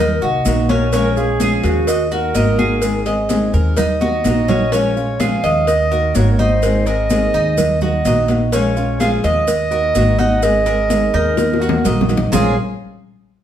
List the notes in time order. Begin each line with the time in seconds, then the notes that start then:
Already playing: D#2 A#4
0.00 D#4
0.21 C2 A#3 D#4 F#4 D#5, high conga, maracas
0.45 A#1 D#3 A#3 D#4 F#4, cowbell, high conga, maracas
0.69 A#3 C#4 D#4 F#4 A#4, cowbell, high conga, maracas
0.93 F3 G#3 C#4 F4 A#4, cowbell, high conga, maracas
1.17 G#3 C#4 F4 G#4, maracas
1.40 F3 G#3 C#4 F4 G#4, cowbell, high conga, maracas
1.64 D#2 F#4, cowbell, high conga, maracas
1.87 D#5, muted nylon-string guitar stroke, cowbell, high conga, maracas
2.11 A#3 D#4 F#4 A#4, high conga, maracas
2.34 G#1 D#3 A#3 D#4 F#4 D#5, cowbell, high conga, maracas
2.58 A#3 D#4 F#4 G#4, high conga, maracas
2.82 D#3 G#3 C4 G#4, cowbell, maracas
3.06 G#3 C4 G#4 D#5, cowbell, high conga, maracas
3.29 D#3 G#3 C4 G#4, cowbell, high conga, maracas
3.53 D#2 A#4, high conga, maracas
3.77 D#4, muted nylon-string guitar stroke, cowbell, high conga, low conga, maracas
4.00 A#3 D#4 F#4 D#5, high conga, maracas
4.24 A#1 D#3 A#3 D#4 F#4, cowbell, high conga, maracas
4.48 A#3 C#4 D#4 F#4, cowbell, low conga, maracas
4.72 F3 G#3 C#4 F4 C#5, cowbell, high conga, maracas
4.96 G#3 C#4 F4, high conga, maracas
5.19 F3 G#3 C#4 F4 G#4 F5, cowbell, high conga, maracas
5.44 D#2 D#5, cowbell, high conga, maracas
5.67 D#5, muted nylon-string guitar stroke, cowbell, high conga, maracas
5.91 A#3 D#4 F#4 A#4, high conga, maracas
6.14 G#1 D#3 A#3 D#4 F#4 C#5, cowbell, high conga, maracas
6.32 C#5
6.38 A#3 D#4 F#4 C5, high conga, maracas
6.62 D#3 G#3 C4 G#4, cowbell, high conga, maracas
6.86 G#3 C4 G#4 A#4 D#5, cowbell, high conga, maracas
7.10 D#3 G#3 C4 G#4, cowbell, high conga, maracas
7.34 D#2 D#4, high conga, maracas
7.58 muted nylon-string guitar stroke, cowbell, high conga, low conga, maracas
7.81 A#3 D#4 F#4 D#5, high conga, low conga, maracas
8.05 A#1 D#3 A#3 D#4 F#4 D#5, cowbell, high conga, maracas
8.28 A#3 D#4 F#4, cowbell, high conga, maracas
8.52 F3 G#3 C#4 F4 C#5, cowbell, high conga, maracas
8.76 G#3 C#4 F4, high conga, maracas
8.99 F3 G#3 C#4 F4 G#4 F5, cowbell, high conga, maracas
9.24 D#2 D#5, cowbell, high conga, maracas
9.48 muted nylon-string guitar stroke, cowbell, high conga, maracas
9.71 A#3 D#4 F#4 A#4, high conga, maracas
9.95 G#1 D#3 A#3 D#4 F#4, cowbell, high conga, maracas
10.18 A#3 D#4 F#4 F#5, high conga, maracas
10.43 D#3 G#3 C4 G#4 D#5, cowbell, high conga, maracas
10.66 G#3 C4 G#4 A#4, cowbell, high conga, maracas
10.89 D#3 G#3 C4 G#4, cowbell, high conga, maracas
11.14 D#2 D#4 A#4, high conga, maracas
11.37 muted nylon-string guitar stroke, cowbell, high bongo, high conga, maracas
11.54 high bongo
11.60 A#3 D#4 F#4, maracas
11.69 low bongo, high conga
11.84 A#1 D#3 A#3 D#4 F#4 D#5, cowbell, low conga, maracas
12.01 low bongo, low conga
12.08 A#3 D#4 F#4, cowbell, maracas
12.17 low bongo, low conga
12.32 A#1 A#2 F3 G#3 A#3 C#4 F4 G#4 A#4 C#5, low bongo, low conga, maracas